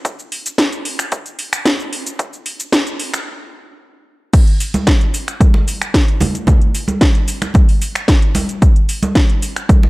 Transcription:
0.05 kick loud
0.05 closed hi-hat medium
0.05 shaker medium
0.19 shaker soft
0.32 open hi-hat loud
0.46 closed hi-hat medium
0.46 shaker medium
0.58 kick loud
0.58 snare loud
0.58 closed hi-hat medium
0.58 shaker medium
0.73 closed hi-hat soft
0.73 shaker soft
0.85 open hi-hat loud
0.99 finger snap medium
0.99 closed hi-hat medium
0.99 shaker medium
1.12 kick loud
1.12 closed hi-hat medium
1.12 shaker medium
1.26 closed hi-hat soft
1.26 shaker soft
1.39 open hi-hat medium
1.53 finger snap medium
1.53 closed hi-hat medium
1.53 shaker medium
1.66 kick medium
1.66 snare loud
1.66 closed hi-hat medium
1.66 shaker medium
1.80 shaker soft
1.93 open hi-hat loud
2.07 closed hi-hat medium
2.07 shaker medium
2.19 kick loud
2.19 closed hi-hat medium
2.19 shaker medium
2.33 shaker soft
2.46 open hi-hat loud
2.60 closed hi-hat medium
2.60 shaker medium
2.72 kick loud
2.72 snare loud
2.72 closed hi-hat medium
2.72 shaker medium
2.87 closed hi-hat soft
2.87 shaker soft
3.00 open hi-hat loud
3.14 finger snap medium
3.14 closed hi-hat medium
3.14 shaker medium
4.33 kick loud
4.33 closed hi-hat medium
4.33 crash loud
4.33 shaker soft
4.47 closed hi-hat soft
4.60 open hi-hat loud
4.60 shaker medium
4.74 closed hi-hat medium
4.74 high conga medium
4.74 shaker soft
4.87 kick loud
4.87 snare loud
4.87 closed hi-hat medium
4.87 shaker soft
5.01 closed hi-hat soft
5.14 open hi-hat loud
5.14 shaker medium
5.28 finger snap medium
5.28 closed hi-hat medium
5.28 shaker soft
5.40 kick loud
5.40 closed hi-hat medium
5.40 high conga medium
5.40 shaker soft
5.54 muted conga medium
5.68 open hi-hat loud
5.68 shaker medium
5.82 finger snap medium
5.82 closed hi-hat medium
5.82 shaker soft
5.94 kick loud
5.94 snare loud
5.94 closed hi-hat medium
5.94 shaker soft
6.08 closed hi-hat soft
6.20 open hi-hat loud
6.20 high conga loud
6.20 low conga medium
6.20 shaker medium
6.35 closed hi-hat medium
6.35 muted conga soft
6.35 shaker soft
6.47 kick loud
6.47 closed hi-hat medium
6.47 low conga medium
6.47 shaker soft
6.62 closed hi-hat soft
6.75 open hi-hat loud
6.75 shaker medium
6.88 closed hi-hat medium
6.88 high conga medium
6.88 shaker soft
7.01 kick loud
7.01 snare loud
7.01 closed hi-hat medium
7.01 shaker soft
7.15 closed hi-hat soft
7.28 open hi-hat loud
7.28 shaker medium
7.42 finger snap medium
7.42 closed hi-hat medium
7.42 muted conga medium
7.42 shaker soft
7.54 kick loud
7.54 closed hi-hat medium
7.54 high conga medium
7.54 shaker soft
7.69 open hi-hat medium
7.82 open hi-hat loud
7.82 shaker medium
7.95 finger snap medium
7.95 closed hi-hat medium
7.95 shaker soft
8.08 kick loud
8.08 snare loud
8.08 closed hi-hat medium
8.08 shaker soft
8.22 closed hi-hat soft
8.35 open hi-hat loud
8.35 muted conga medium
8.35 high conga loud
8.35 shaker medium
8.49 closed hi-hat medium
8.49 shaker soft
8.62 kick loud
8.62 closed hi-hat medium
8.62 shaker soft
8.76 closed hi-hat soft
8.89 open hi-hat loud
8.89 shaker medium
9.03 closed hi-hat soft
9.03 high conga loud
9.03 shaker soft
9.15 kick loud
9.15 snare loud
9.15 closed hi-hat medium
9.15 shaker soft
9.30 closed hi-hat soft
9.42 open hi-hat loud
9.42 shaker medium
9.56 finger snap medium
9.56 closed hi-hat medium
9.56 shaker soft
9.69 kick loud
9.69 closed hi-hat medium
9.69 high conga medium
9.69 shaker soft
9.83 muted conga medium

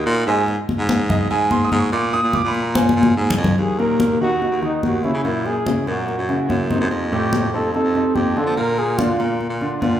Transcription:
0.00 0.25 D#4 medium
0.00 0.25 F#4 medium
0.00 0.25 A#4 medium
0.00 0.25 D#5 medium
0.06 0.26 A#2 loud
0.26 0.57 G#2 loud
0.26 0.40 G#4 medium
0.26 0.40 C5 medium
0.26 0.40 D#5 medium
0.26 0.40 G#5 medium
0.26 high conga soft
0.48 high conga soft
0.69 high conga medium
0.78 1.28 G#2 loud
0.89 high conga medium
1.10 1.30 D#5 medium
1.10 high conga soft
1.10 low conga medium
1.30 1.70 G#2 medium
1.30 1.51 G#5 loud
1.30 high conga soft
1.51 1.65 C6 medium
1.51 high conga medium
1.65 1.78 D#6 medium
1.72 1.91 G#2 loud
1.72 high conga medium
1.79 1.92 C#6 medium
1.92 2.22 A#2 medium
1.92 2.13 D6 medium
1.92 high conga soft
2.13 2.34 D#6 loud
2.13 high conga soft
2.23 2.43 A#2 medium
2.33 2.48 D6 medium
2.33 high conga medium
2.44 2.94 A#2 medium
2.48 2.62 B5 medium
2.55 high conga soft
2.62 2.75 A#5 medium
2.75 3.44 G#5 medium
2.75 high conga loud
2.89 high conga medium
2.96 3.16 A#2 medium
3.03 high conga loud
3.17 3.36 G#2 medium
3.30 low conga medium
3.37 3.56 F2 medium
3.44 low conga loud
3.58 4.17 D#2 medium
3.58 3.80 G#4 medium
3.58 high conga soft
3.79 4.13 A#2 medium
3.79 4.14 A#3 medium
3.79 4.21 A#4 medium
3.79 4.14 A#4 medium
3.79 high conga soft
4.00 high conga medium
4.20 4.50 D#2 medium
4.20 4.38 D#3 medium
4.20 4.38 D#4 medium
4.20 4.38 F#4 medium
4.20 4.60 F#4 medium
4.41 4.59 D#3 soft
4.41 4.59 D#4 medium
4.41 4.59 F#4 medium
4.41 high conga soft
4.51 4.71 D#2 medium
4.62 4.96 D#3 medium
4.62 4.97 D#4 medium
4.62 4.82 D#4 medium
4.62 4.97 F#4 medium
4.62 high conga soft
4.82 5.12 D#2 medium
4.82 5.05 F#4 medium
4.82 high conga medium
5.04 5.21 C#3 medium
5.04 5.21 C#4 medium
5.04 5.47 E4 medium
5.04 5.22 E4 medium
5.04 high conga soft
5.14 5.23 C#3 medium
5.24 5.58 F#2 medium
5.24 5.59 A#2 medium
5.24 5.59 A#3 medium
5.24 5.59 A#4 medium
5.24 high conga soft
5.46 5.87 G#4 medium
5.46 high conga soft
5.67 5.84 C#3 medium
5.67 5.84 C#4 medium
5.67 5.84 E4 medium
5.67 high conga medium
5.87 6.17 F#2 medium
5.87 6.21 A#2 medium
5.87 6.22 A#3 medium
5.87 6.67 F#4 medium
5.87 6.22 A#4 medium
5.87 high conga soft
6.08 high conga soft
6.18 6.38 F#2 medium
6.29 6.46 C#3 medium
6.29 6.46 C#4 medium
6.29 6.46 E4 medium
6.29 high conga soft
6.49 6.79 F#2 medium
6.49 6.67 C#3 medium
6.49 6.67 C#4 medium
6.49 6.67 E4 medium
6.49 high conga medium
6.70 7.04 C3 medium
6.70 7.04 C4 medium
6.70 7.05 D#4 medium
6.70 high conga medium
6.80 6.90 F#2 loud
6.90 7.50 F2 medium
6.90 high conga soft
7.12 7.46 A2 medium
7.12 7.46 A3 medium
7.12 7.50 G4 medium
7.12 7.46 A4 medium
7.12 high conga soft
7.33 high conga medium
7.53 7.83 F2 medium
7.53 7.70 C3 medium
7.53 7.71 C4 medium
7.53 7.71 D#4 medium
7.53 7.73 A4 medium
7.74 7.91 C3 medium
7.74 7.91 C4 medium
7.74 7.91 D#4 medium
7.74 8.17 A4 medium
7.74 high conga soft
7.84 8.04 F2 medium
7.95 8.29 C3 medium
7.95 8.29 C4 medium
7.95 8.29 D#4 medium
7.95 high conga soft
8.15 8.45 F2 medium
8.15 8.39 G4 medium
8.15 high conga medium
8.36 8.53 D3 medium
8.36 8.54 D4 medium
8.36 8.54 F4 medium
8.36 8.59 A4 medium
8.36 high conga soft
8.46 8.56 F3 medium
8.56 9.16 A#2 medium
8.56 8.91 A#2 medium
8.56 8.91 A#3 medium
8.56 8.80 A#4 medium
8.56 8.92 A#4 medium
8.56 high conga soft
8.78 9.00 G#4 medium
8.78 high conga soft
8.98 9.16 D3 medium
8.98 9.16 D4 medium
8.98 9.40 F4 medium
8.98 9.16 F4 medium
8.98 high conga medium
9.19 9.49 A#2 medium
9.19 9.53 A#2 medium
9.19 9.54 A#3 medium
9.19 9.54 A#4 medium
9.19 high conga soft
9.41 high conga soft
9.50 9.70 A#2 medium
9.61 9.78 D3 medium
9.61 9.78 D4 medium
9.61 9.78 F4 medium
9.61 high conga soft
9.80 10.00 A#2 medium
9.80 9.98 D3 medium
9.80 9.99 D4 medium
9.80 9.99 F4 medium
9.80 high conga medium

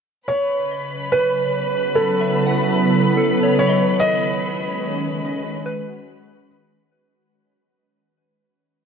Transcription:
0.27 3.59 C#3 medium
0.27 6.92 B4 medium
0.27 1.15 C#5 medium
0.27 6.92 B5 medium
0.71 3.13 D#5 soft
0.88 3.59 F#3 medium
1.12 1.97 B4 medium
1.43 4.91 B3 medium
1.69 3.58 E4 medium
1.69 3.59 A4 medium
1.95 3.63 A4 medium
1.95 3.42 C#5 soft
2.21 4.18 E5 soft
2.46 4.42 F#5 soft
3.17 3.95 A4 medium
3.43 4.19 C#5 soft
3.59 6.92 D#3 medium
3.59 4.01 C#5 medium
3.69 4.42 D#5 soft
3.91 6.92 C#4 medium
4.00 6.45 D#5 loud
4.29 6.92 G#3 medium
5.08 6.92 F#4 medium
5.08 6.92 B4 medium
5.66 7.29 B4 medium

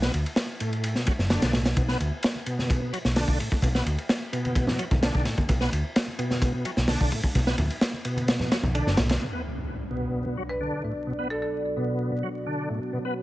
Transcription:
0.02 0.12 B3 loud
0.02 snare medium
0.14 0.23 D2 medium
0.14 ride medium
0.26 ride soft
0.36 snare loud
0.36 ride medium
0.60 0.95 A2 loud
0.60 ride medium
0.73 ride soft
0.84 ride medium
0.95 1.06 B2 medium
0.95 snare soft
1.07 1.13 F#3 medium
1.07 kick loud
1.07 ride medium
1.19 1.36 F#1 medium
1.19 snare soft
1.30 1.52 D3 medium
1.30 snare medium
1.30 ride medium
1.42 1.72 B1 medium
1.42 snare medium
1.42 ride medium
1.53 1.63 A2 medium
1.53 snare loud
1.53 ride medium
1.65 snare medium
1.65 ride medium
1.77 1.94 B1 medium
1.77 1.82 B2 loud
1.77 kick loud
1.77 ride medium
1.88 1.98 B3 medium
1.88 snare soft
2.00 2.09 D2 medium
2.00 ride medium
2.23 snare loud
2.23 ride medium
2.35 muted conga soft
2.46 2.80 B2 loud
2.46 ride medium
2.59 snare soft
2.59 high conga medium
2.70 kick loud
2.70 ride medium
2.82 2.92 B2 medium
2.93 2.99 F#3 medium
2.93 ride medium
3.05 3.22 B1 medium
3.05 snare medium
3.16 3.38 D3 medium
3.16 snare loud
3.16 open hi-hat medium
3.28 3.37 B1 medium
3.28 kick medium
3.28 muted conga soft
3.39 3.49 A2 medium
3.39 ride medium
3.39 muted conga medium
3.52 kick loud
3.62 3.80 B1 medium
3.62 3.68 B2 loud
3.62 kick loud
3.62 ride medium
3.75 3.84 B3 loud
3.75 snare medium
3.86 3.95 D2 loud
3.86 ride medium
3.98 ride soft
4.09 snare loud
4.09 ride medium
4.32 4.66 B2 loud
4.32 ride medium
4.45 ride soft
4.45 high conga medium
4.55 kick loud
4.55 ride medium
4.67 4.78 B2 medium
4.67 snare soft
4.67 low conga medium
4.79 4.85 F#3 medium
4.79 ride medium
4.91 5.08 B1 medium
4.91 kick loud
4.91 high conga medium
4.91 low conga medium
5.02 5.24 D3 medium
5.02 snare loud
5.02 ride medium
5.15 5.23 B1 medium
5.15 kick medium
5.25 5.35 A2 medium
5.25 snare soft
5.25 ride medium
5.25 muted conga medium
5.38 kick medium
5.38 high conga medium
5.49 5.67 B1 medium
5.49 5.54 B2 loud
5.49 kick loud
5.49 ride medium
5.61 5.70 B3 loud
5.61 snare soft
5.72 5.81 D2 medium
5.72 ride medium
5.96 snare loud
5.96 ride medium
6.08 muted conga soft
6.18 6.53 B2 loud
6.18 ride medium
6.31 snare soft
6.31 high conga medium
6.42 kick loud
6.42 ride medium
6.54 6.65 B2 loud
6.65 6.71 F#3 medium
6.65 ride medium
6.77 6.95 B1 medium
6.77 snare soft
6.88 7.11 D3 medium
6.88 snare loud
6.88 open hi-hat medium
7.00 7.09 B1 medium
7.00 kick loud
7.00 muted conga soft
7.12 7.21 A2 medium
7.12 ride medium
7.12 muted conga medium
7.23 kick medium
7.35 7.53 B1 loud
7.35 7.41 B2 loud
7.35 kick loud
7.35 ride medium
7.47 7.56 B3 loud
7.47 snare medium
7.58 7.67 D2 loud
7.58 ride medium
7.58 muted conga soft
7.58 low conga medium
7.70 ride soft
7.81 snare loud
7.81 ride medium
7.93 muted conga soft
8.05 8.39 B2 loud
8.05 ride medium
8.17 ride soft
8.17 high conga medium
8.28 snare loud
8.28 ride medium
8.40 8.51 B2 loud
8.40 snare soft
8.40 low conga medium
8.51 8.57 F#3 medium
8.51 snare loud
8.51 ride medium
8.51 muted conga soft
8.63 8.80 B1 medium
8.63 high conga medium
8.63 low conga medium
8.75 8.97 D3 loud
8.75 ride medium
8.86 8.95 F#1 loud
8.86 snare soft
8.97 9.15 B1 medium
8.97 9.07 A2 medium
8.97 snare loud
8.97 ride medium
8.97 muted conga medium
9.09 snare medium
9.09 ride medium
9.09 high conga medium
9.21 9.27 B2 medium
9.21 13.22 B3 medium
9.21 13.22 F#4 medium
9.21 12.92 D5 medium
9.21 impact medium
9.33 9.42 B3 medium
9.91 10.25 B2 medium
10.26 10.37 B2 medium
10.37 10.43 F#3 medium
10.49 10.96 B4 medium
10.61 10.83 D3 medium
10.84 10.93 A2 medium
11.07 11.13 B2 medium
11.19 11.28 B3 medium
11.30 11.38 A4 medium
11.42 11.49 A4 medium
11.77 12.11 B2 medium
12.12 12.23 B2 medium
12.23 12.29 F#3 medium
12.46 12.69 D3 medium
12.70 12.79 A2 medium
12.93 12.99 B2 medium
12.93 13.22 C#5 medium
13.05 13.14 B3 medium

